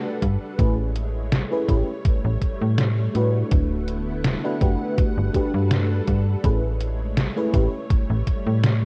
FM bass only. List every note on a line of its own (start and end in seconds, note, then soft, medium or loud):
0.22 0.37 G2 medium
0.59 1.44 A1 loud
1.69 1.83 A1 medium
2.05 2.21 A1 soft
2.25 2.38 A1 loud
2.62 3.09 A2 loud
3.15 3.43 A2 medium
3.52 4.37 D1 loud
4.61 4.76 F#1 medium
5.17 5.30 G1 medium
5.54 6.01 G2 loud
6.08 6.36 G2 medium
6.44 7.29 A1 loud
7.54 7.69 A1 medium
7.91 8.06 A1 soft
8.10 8.23 A1 loud
8.47 8.85 A2 loud